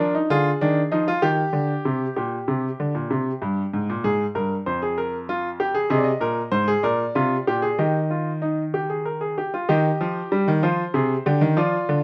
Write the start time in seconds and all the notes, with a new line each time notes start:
Already playing: F3 D4 A#4
0.15 D#4
0.30 D3 F4 G#4
0.61 D#3 D4
0.92 F3 D#4
1.08 F4
1.22 D#3 G4
1.53 D3
1.85 C3
2.16 A#2 G4
2.48 C3
2.80 D3
2.95 A#2
3.11 C3
3.42 G2
3.74 G#2
3.90 A#2
4.04 G#2 G#4
4.35 G2 A#4
4.66 F2 C5
4.82 G#4
4.98 A#4
5.29 F4
5.60 G4
5.75 G#4
5.90 C3 G#4 D#5
5.98 D5
6.04 D#5
6.21 A#2 A#4
6.52 G#2 C5
6.68 G#4
6.83 A#2 A#4 D5
7.15 C3 F4
7.47 A#2 G4
7.62 G#4
7.78 D#3 G4 D#5
8.10 F4
8.42 D#4
8.74 G4
8.90 G#4
9.05 A#4
9.21 G#4
9.38 G4
9.54 F4
9.69 D#3 G4 D#5
10.01 F3
10.32 G3
10.48 D#3
10.63 F3 F4 C5
10.94 C3 G#4
11.26 D3 G4
11.41 D#3
11.57 F3 F4 D5
11.89 D3